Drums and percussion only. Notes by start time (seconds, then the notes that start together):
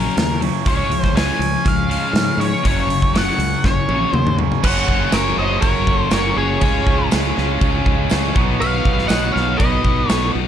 0.18 snare, open hi-hat
0.42 open hi-hat
0.66 kick, open hi-hat
0.92 open hi-hat
1.04 kick, snare
1.17 snare, open hi-hat
1.42 open hi-hat
1.66 kick, open hi-hat
1.91 open hi-hat
2.16 snare, open hi-hat
2.41 open hi-hat
2.65 kick, open hi-hat
2.90 open hi-hat
3.02 kick
3.16 snare, open hi-hat
3.40 open hi-hat
3.64 kick, snare
3.89 high tom
4.14 mid tom
4.27 mid tom
4.39 floor tom
4.52 floor tom
4.64 kick, crash
4.88 kick
5.12 snare, tambourine, crash
5.62 kick, crash
5.87 kick
6.11 snare, tambourine, crash
6.61 kick, crash
6.87 kick
7.11 snare, tambourine, crash
7.38 snare
7.61 kick, crash
7.86 kick
8.10 snare, tambourine, crash
8.36 kick
8.61 crash
8.85 kick
8.98 snare
9.09 snare, tambourine, crash
9.36 snare
9.60 kick, crash
9.85 kick
10.09 snare, tambourine, crash